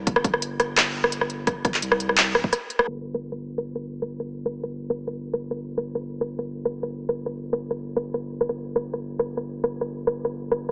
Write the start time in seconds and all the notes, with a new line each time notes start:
0.07 G1, kick, closed hi-hat
0.16 cross-stick
0.24 kick, closed hi-hat
0.34 cross-stick
0.42 closed hi-hat
0.60 cross-stick, closed hi-hat
0.77 cross-stick, clap, closed hi-hat
1.04 cross-stick
1.12 closed hi-hat
1.21 cross-stick
1.30 closed hi-hat
1.47 kick, cross-stick, closed hi-hat
1.65 kick, cross-stick, closed hi-hat
1.74 clap
1.82 C2, closed hi-hat
1.92 cross-stick
2.00 closed hi-hat
2.09 cross-stick
2.18 clap, closed hi-hat
2.35 D1, cross-stick
2.44 kick
2.53 cross-stick, closed hi-hat
2.70 closed hi-hat
2.79 cross-stick
2.88 G1, cross-stick
3.14 cross-stick
3.32 cross-stick
3.58 cross-stick
3.75 cross-stick
4.02 cross-stick
4.20 cross-stick
4.46 cross-stick
4.63 cross-stick
4.90 cross-stick
5.07 cross-stick
5.33 cross-stick
5.51 cross-stick
5.78 cross-stick
5.95 cross-stick
6.21 cross-stick
6.39 cross-stick
6.65 cross-stick
6.83 cross-stick
7.09 cross-stick
7.26 cross-stick
7.53 cross-stick
7.71 cross-stick
7.96 cross-stick
8.14 cross-stick
8.41 cross-stick
8.49 G1, cross-stick
8.76 cross-stick
8.93 cross-stick
9.19 cross-stick
9.37 cross-stick
9.64 cross-stick
9.81 cross-stick
10.07 cross-stick
10.25 cross-stick
10.51 cross-stick
10.69 cross-stick